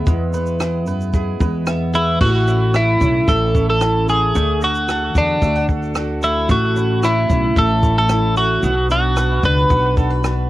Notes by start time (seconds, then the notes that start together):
Already playing: B3 E4 G#4 B4 E5
0.07 E2 G#3, kick, shaker
0.33 B3 B4, shaker
0.46 shaker
0.60 E4 G#4, cross-stick, shaker
0.86 F#2 B3 B4, shaker
1.01 shaker
1.14 E4 G#4, kick, shaker
1.41 E2 G#3 B4, kick, shaker
1.67 B3 E5, cross-stick, shaker
1.94 E4 G#4 B4, shaker
2.21 A1 A2 A3 F#4, kick, crash
2.47 C#4 E4, shaker
2.74 E4 C#5, cross-stick, shaker
3.01 B1 C#4 E4, kick, shaker
3.28 A1 E4 A4 E5, kick, shaker
3.54 C#4 C#5, kick, shaker
3.70 A4
3.81 E4, cross-stick, shaker
4.08 A3 G#4 C#5, cross-stick, shaker
4.35 D2 D3 A3, shaker
4.61 D4 F#4, shaker
4.75 shaker
4.88 F#4 A4, cross-stick, shaker
5.15 E2 D4 F#4, kick, shaker
5.42 D2 F#4 E5, kick, shaker
5.56 F#5
5.69 D4 A4, kick, shaker
5.83 shaker
5.95 F#4, cross-stick, shaker
6.22 A3 E4 A4, shaker
6.49 A1 A2 A3 F#4, kick, shaker
6.76 C#4 E4, shaker
7.03 E4 C#5, cross-stick, shaker
7.29 B1 C#4 E4, kick, shaker
7.56 A1 E4 A4 E5, kick, shaker
7.83 C#4 C#5, kick, shaker
7.98 A4
8.09 E4, cross-stick, shaker
8.36 A3 F#4 C#5, cross-stick, shaker
8.63 B1 B2 B3, shaker
8.90 D4 F#4, shaker
9.16 F#4 B4, cross-stick, shaker
9.43 C#2 D4 B4, kick, shaker
9.69 B1 F#4 F#5, kick, shaker
9.96 D4 A4, kick, shaker
10.11 B4
10.23 D4 F#4, cross-stick, shaker